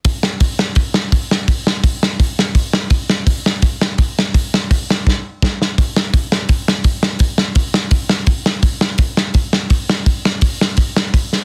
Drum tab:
HH |o-o-o-o-|o-o-o-o-|o-o-o-o-|o-o-----|
SD |-o-o-o-o|-o-o-o-o|-o-o-o-o|-o-oo-oo|
BD |o-o-o-o-|o-o-o-o-|o-o-o-o-|o-o-o-o-|

HH |o-o-o-o-|o-o-o-o-|o-o-o-o-|o-o-o-o-|
SD |-o-o-o-o|-o-o-o-o|-o-o-o-o|-o-o-o-o|
BD |o-o-o-o-|o-o-o-o-|o-o-o-o-|o-o-o-o-|